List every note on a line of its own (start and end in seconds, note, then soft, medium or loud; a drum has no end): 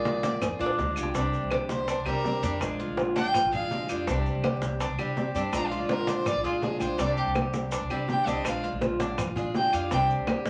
0.00 0.40 A#1 medium
0.00 0.40 F3 medium
0.00 0.40 G#3 medium
0.00 0.75 A#3 medium
0.00 0.41 D4 medium
0.00 0.41 F4 medium
0.00 0.22 G#4 medium
0.00 0.75 D5 medium
0.05 cowbell medium
0.05 high conga loud
0.05 maracas soft
0.23 0.41 D5 medium
0.23 cowbell medium
0.23 high conga loud
0.23 maracas medium
0.41 0.51 F2 loud
0.41 0.60 G#4 medium
0.41 muted steel-string acoustic guitar stroke medium
0.41 cowbell loud
0.41 high bongo medium
0.41 high conga soft
0.41 low conga medium
0.41 claves medium
0.41 maracas medium
0.59 0.77 A#2 medium
0.59 0.77 G#3 medium
0.59 0.78 D4 medium
0.59 0.96 D4 medium
0.59 0.77 F4 medium
0.59 high conga soft
0.59 maracas soft
0.66 high bongo medium
0.78 0.95 D2 medium
0.78 0.95 F3 soft
0.78 0.96 G#3 medium
0.78 0.96 D4 medium
0.78 0.95 F4 medium
0.78 cowbell medium
0.78 low bongo medium
0.78 high conga medium
0.78 maracas soft
0.96 1.13 C2 medium
0.96 1.15 G#3 medium
0.96 1.14 D4 medium
0.96 1.14 F4 medium
0.96 1.14 G4 medium
0.96 claves medium
0.96 maracas medium
1.03 low bongo medium
1.14 1.41 C2 loud
1.14 1.87 C3 medium
1.14 1.87 G3 medium
1.14 1.87 C4 medium
1.14 1.50 D4 medium
1.14 1.89 D4 medium
1.14 1.88 G4 medium
1.14 high bongo medium
1.14 high conga soft
1.14 maracas medium
1.33 high bongo soft
1.33 high conga soft
1.33 maracas soft
1.42 1.94 C2 medium
1.51 1.87 G4 medium
1.51 high bongo medium
1.51 high conga loud
1.51 claves medium
1.51 maracas soft
1.69 2.04 C5 medium
1.69 high conga loud
1.69 maracas medium
1.88 2.06 D4 medium
1.88 muted steel-string acoustic guitar stroke medium
1.88 high bongo medium
1.88 high conga soft
1.88 maracas medium
1.97 2.06 C2 medium
2.05 2.41 C3 medium
2.05 2.23 G3 medium
2.05 2.24 C4 medium
2.05 2.24 D4 medium
2.05 2.23 G4 medium
2.05 2.42 G4 medium
2.05 2.57 A#4 medium
2.05 high conga soft
2.05 claves medium
2.05 maracas soft
2.24 2.42 G3 medium
2.24 2.42 C4 medium
2.24 2.42 D4 medium
2.24 2.41 G4 medium
2.24 high bongo soft
2.24 low bongo medium
2.24 high conga medium
2.24 maracas soft
2.42 2.60 F2 medium
2.42 2.59 G3 medium
2.42 2.60 C4 medium
2.42 2.78 D4 medium
2.42 2.60 D4 medium
2.42 2.60 G4 medium
2.42 high bongo soft
2.42 high conga medium
2.42 maracas medium
2.59 2.87 A#1 loud
2.59 3.32 F3 medium
2.59 3.33 G#3 medium
2.59 3.34 D4 medium
2.59 high bongo medium
2.59 high conga soft
2.59 claves medium
2.59 maracas medium
2.63 3.34 F4 medium
2.79 3.15 F4 medium
2.79 high bongo soft
2.79 high conga soft
2.79 maracas soft
2.88 3.40 A#1 medium
2.97 high bongo medium
2.97 high conga medium
2.97 maracas soft
3.16 3.33 D4 medium
3.16 3.50 G5 loud
3.16 high bongo soft
3.16 high conga medium
3.16 maracas medium
3.34 3.52 F4 medium
3.34 muted steel-string acoustic guitar stroke medium
3.34 high bongo medium
3.34 high conga soft
3.34 low conga medium
3.34 claves medium
3.34 maracas medium
3.43 3.52 A#1 medium
3.52 3.87 A#2 medium
3.52 3.71 G#3 medium
3.52 3.71 D4 medium
3.52 3.70 F4 medium
3.52 3.88 G#4 medium
3.52 4.03 F5 loud
3.52 high conga soft
3.52 low conga medium
3.52 maracas soft
3.71 3.88 F3 medium
3.71 3.89 G#3 medium
3.71 3.89 D4 medium
3.71 3.88 F4 medium
3.71 high bongo soft
3.71 low bongo medium
3.71 high conga medium
3.71 maracas soft
3.89 4.06 F2 medium
3.89 4.08 G#3 medium
3.89 4.07 D4 medium
3.89 4.07 F4 medium
3.89 4.07 G4 medium
3.89 high bongo soft
3.89 claves medium
3.89 maracas medium
4.07 4.33 C2 loud
4.07 4.79 C3 medium
4.07 4.80 G3 medium
4.07 4.80 C4 medium
4.07 4.43 D4 medium
4.07 4.82 D4 medium
4.07 high bongo medium
4.07 high conga soft
4.07 maracas medium
4.11 4.81 G4 medium
4.25 high bongo soft
4.25 high conga soft
4.25 maracas soft
4.35 4.87 C2 medium
4.44 4.79 G4 medium
4.44 high bongo medium
4.44 high conga medium
4.44 claves medium
4.44 maracas soft
4.62 high bongo soft
4.62 high conga medium
4.62 maracas medium
4.80 4.98 D4 medium
4.80 muted steel-string acoustic guitar stroke medium
4.80 high bongo medium
4.80 high conga soft
4.80 maracas medium
4.89 4.98 C2 medium
4.98 5.33 C3 medium
4.98 5.16 G3 medium
4.98 5.16 C4 medium
4.98 5.16 D4 medium
4.98 5.16 G4 medium
4.98 5.34 G4 medium
4.98 high conga soft
4.98 claves medium
4.98 maracas soft
5.17 5.34 G3 medium
5.17 5.35 C4 medium
5.17 5.34 D4 medium
5.17 5.33 G4 medium
5.17 high bongo soft
5.17 low bongo medium
5.17 high conga medium
5.17 maracas soft
5.35 5.52 G2 medium
5.35 5.52 G3 medium
5.35 5.53 C4 medium
5.35 5.53 D4 medium
5.35 5.71 D4 medium
5.35 5.52 G4 medium
5.35 high bongo soft
5.35 maracas medium
5.52 5.79 A#1 loud
5.52 6.24 F3 medium
5.52 6.25 G#3 medium
5.52 6.26 D4 medium
5.52 5.69 A#5 medium
5.52 high bongo medium
5.52 high conga soft
5.52 claves medium
5.52 maracas medium
5.56 6.26 F4 medium
5.67 5.81 F5 medium
5.71 6.07 F4 medium
5.71 high bongo soft
5.71 high conga soft
5.71 maracas soft
5.79 6.32 A#1 medium
5.79 5.93 D5 medium
5.89 6.10 A#4 medium
5.89 high bongo medium
5.89 high conga loud
5.89 maracas soft
6.07 6.25 D4 medium
6.07 6.29 C5 medium
6.07 high conga loud
6.07 maracas medium
6.26 6.44 F4 medium
6.26 6.45 D5 loud
6.26 muted steel-string acoustic guitar stroke medium
6.26 high bongo medium
6.26 high conga soft
6.26 low conga medium
6.26 claves medium
6.26 maracas medium
6.35 6.43 A#1 medium
6.43 6.79 A#2 medium
6.43 6.61 G#3 medium
6.43 6.62 D4 medium
6.43 6.61 F4 medium
6.43 6.65 F4 medium
6.43 6.80 G#4 medium
6.43 high conga soft
6.43 maracas soft
6.62 6.80 F3 medium
6.62 6.80 G#3 medium
6.62 6.80 D4 medium
6.62 6.78 F4 medium
6.62 6.80 G#4 medium
6.62 high bongo soft
6.62 low bongo medium
6.62 high conga medium
6.62 maracas soft
6.80 6.97 A#1 medium
6.80 6.99 G#3 medium
6.80 6.99 D4 medium
6.80 6.98 F4 medium
6.80 6.99 G4 medium
6.80 7.02 C5 medium
6.80 high bongo soft
6.80 high conga medium
6.80 claves medium
6.80 maracas medium
6.98 7.25 C2 loud
6.98 7.70 C3 medium
6.98 7.71 G3 medium
6.98 7.71 C4 medium
6.98 7.35 D4 medium
6.98 7.72 D4 medium
6.98 7.71 G4 medium
6.98 7.17 D5 medium
6.98 high bongo medium
6.98 high conga soft
6.98 maracas medium
7.17 7.28 G4 medium
7.17 high bongo soft
7.17 high conga soft
7.17 maracas soft
7.26 7.78 C2 medium
7.35 7.71 G4 medium
7.35 high bongo medium
7.35 high conga loud
7.35 claves medium
7.35 maracas soft
7.53 high bongo soft
7.53 high conga medium
7.53 maracas medium
7.71 7.90 D4 medium
7.71 muted steel-string acoustic guitar stroke medium
7.71 high bongo medium
7.71 high conga soft
7.71 maracas medium
7.81 7.89 C2 medium
7.90 8.25 C3 medium
7.90 8.06 G3 medium
7.90 8.07 C4 medium
7.90 8.08 D4 medium
7.90 8.08 G4 medium
7.90 8.26 G4 medium
7.90 high conga soft
7.90 claves medium
7.90 maracas soft
8.08 8.26 G3 medium
8.08 8.26 C4 medium
8.08 8.26 D4 medium
8.08 8.25 G4 medium
8.08 8.29 G5 medium
8.08 high bongo soft
8.08 low bongo medium
8.08 high conga medium
8.08 maracas soft
8.26 8.44 C2 medium
8.26 8.44 G3 medium
8.26 8.45 C4 medium
8.26 8.45 D4 medium
8.26 8.62 D4 medium
8.26 8.44 G4 medium
8.26 8.49 D#5 loud
8.26 high bongo soft
8.26 high conga medium
8.26 maracas medium
8.44 8.71 A#1 loud
8.44 9.17 F3 medium
8.44 9.17 G#3 medium
8.44 9.19 D4 medium
8.44 9.18 F4 medium
8.44 8.64 F5 medium
8.44 high bongo medium
8.44 high conga soft
8.44 claves medium
8.44 maracas medium
8.63 8.99 F4 medium
8.63 high bongo soft
8.63 high conga soft
8.63 maracas soft
8.73 9.25 A#1 medium
8.81 high bongo medium
8.81 high conga medium
8.81 maracas soft
8.99 9.18 D4 medium
8.99 high bongo soft
8.99 high conga medium
8.99 maracas medium
9.18 9.36 F4 medium
9.18 muted steel-string acoustic guitar stroke medium
9.18 high bongo medium
9.18 high conga soft
9.18 low conga medium
9.18 claves medium
9.18 maracas medium
9.27 9.35 A#1 medium
9.36 9.71 A#2 medium
9.36 9.54 G#3 medium
9.36 9.54 D4 medium
9.36 9.54 F4 medium
9.36 9.72 G#4 medium
9.36 high conga soft
9.36 low conga medium
9.36 maracas soft
9.54 9.72 F3 medium
9.54 9.73 G#3 medium
9.54 9.73 D4 medium
9.54 9.71 F4 medium
9.54 9.75 G5 medium
9.54 high bongo soft
9.54 low bongo medium
9.54 high conga medium
9.54 maracas soft
9.73 9.90 F2 medium
9.73 9.91 G#3 medium
9.73 9.91 D4 medium
9.73 9.90 F4 medium
9.73 9.91 G4 medium
9.73 9.92 F5 medium
9.73 high bongo soft
9.73 claves medium
9.73 maracas medium
9.90 10.17 C2 loud
9.90 10.50 C3 medium
9.90 10.50 G3 medium
9.90 10.50 C4 medium
9.90 10.27 D4 medium
9.90 10.50 D4 medium
9.90 10.03 G5 loud
9.90 high bongo medium
9.90 high conga soft
9.90 maracas medium
9.94 10.50 G4 medium
10.09 high bongo soft
10.09 high conga soft
10.09 maracas soft
10.19 10.50 C2 medium
10.27 10.50 G4 medium
10.27 high bongo medium
10.27 high conga medium
10.27 claves medium
10.27 maracas soft
10.45 high bongo soft
10.45 high conga loud
10.45 maracas medium